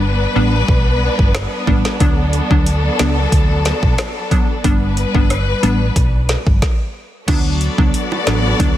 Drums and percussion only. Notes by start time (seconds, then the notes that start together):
0.68 kick
1.19 kick
1.35 cross-stick, snare
1.67 kick
1.85 snare
2.00 kick, closed hi-hat
2.33 closed hi-hat
2.51 kick
2.66 closed hi-hat
2.99 snare, closed hi-hat
3.32 kick, closed hi-hat
3.65 snare, closed hi-hat
3.83 kick
3.98 cross-stick, snare, closed hi-hat
4.31 kick, closed hi-hat
4.64 kick, closed hi-hat
4.97 closed hi-hat
5.15 kick
5.30 cross-stick, closed hi-hat
5.63 closed hi-hat
5.96 kick, closed hi-hat
6.29 snare, closed hi-hat
6.47 kick
6.62 kick, snare
7.28 kick, closed hi-hat, crash, high bongo
7.61 closed hi-hat
7.78 kick, high bongo
7.94 closed hi-hat
8.12 high bongo
8.27 snare, closed hi-hat, high bongo
8.60 kick, closed hi-hat, high bongo